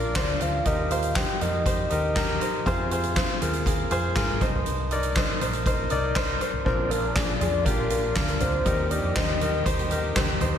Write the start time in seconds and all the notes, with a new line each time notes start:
Already playing: A#1 D4 F4 G4 A#4 D5
0.15 D2 D4 F4 C5, kick, snare, clap, closed hi-hat
0.41 D2 D4 F4 C5 F5, closed hi-hat
0.65 D#2 A#2 D#4 G4 A#4 D#5, kick, closed hi-hat
0.90 D#4 G4 C5 F5, closed hi-hat
1.03 closed hi-hat
1.16 D#4 G4 C5 G5, kick, snare, clap, closed hi-hat
1.40 F2 D#4 G4 A#4 D#5, closed hi-hat
1.65 D#4 G4 C5, kick, closed hi-hat
1.90 D#2 D#4 G4 A#4, closed hi-hat
2.15 D#4 G4 A#4 A#5, kick, snare, clap, closed hi-hat
2.40 D#4 G4 C5 D#5, closed hi-hat
2.66 F2 C3 F4 G#4 C5, kick, closed hi-hat
2.91 F4 G#4 C5, closed hi-hat
3.04 closed hi-hat
3.16 F4 G#4 C5, kick, snare, clap, closed hi-hat
3.41 D#2 F4 G#4 A#4, closed hi-hat
3.53 closed hi-hat
3.66 F4 G#4 A#4, kick, closed hi-hat
3.91 F2 F4 G#4 C5, closed hi-hat
4.16 G#2 F4 G#4 A#4, kick, snare, clap, closed hi-hat
4.29 floor tom
4.41 C2 G2 D#4 A#4 C5, kick, closed hi-hat
4.53 floor tom
4.66 C2, closed hi-hat
4.91 D#4 A#4 D5, closed hi-hat
5.03 closed hi-hat
5.16 D#4 A#4 C5, kick, snare, clap, closed hi-hat
5.41 A#1 D#4 A#4 C5, closed hi-hat
5.53 closed hi-hat
5.66 D#4 A#4 C5, kick, closed hi-hat
5.90 C2 D#4 A#4 D5, closed hi-hat
6.15 D#4 A#4 C5, kick, snare, clap, closed hi-hat
6.40 D#4 A#4 C5, closed hi-hat
6.53 floor tom
6.65 A#1 A#2 D3 F3 A#3 D4 F4 A#4 C5, kick, crash
6.90 D4 F4 A#4, closed hi-hat
7.15 D4 F4 G#4 D5, kick, snare, clap, closed hi-hat
7.40 F2 D4 F4 G#4 D5, closed hi-hat, floor tom
7.65 A#1 D4 F4 G4 A#4, kick, closed hi-hat
7.90 D4 F4 A#4, closed hi-hat
8.15 D2 D4 F4 A#4, kick, snare, clap, closed hi-hat
8.28 closed hi-hat
8.40 D2 D4 F4 A#4 C5, closed hi-hat, floor tom
8.65 D#2 A#2 D#3 G3 D#4 G4 A#4, kick, closed hi-hat
8.91 D#4 G4 A#4 D5, closed hi-hat
9.03 F2
9.15 D#2 D#4 G4 C5 D#5, kick, snare, clap, closed hi-hat
9.41 D#4 G4 A#4, closed hi-hat
9.65 D#2 D#4 G4 C5, kick, closed hi-hat
9.79 closed hi-hat
9.90 D#4 G4 A#4, closed hi-hat
10.15 D2 D#4 G4 C5, kick, snare, clap, closed hi-hat
10.40 D#2 D#4 G4 C5, closed hi-hat, floor tom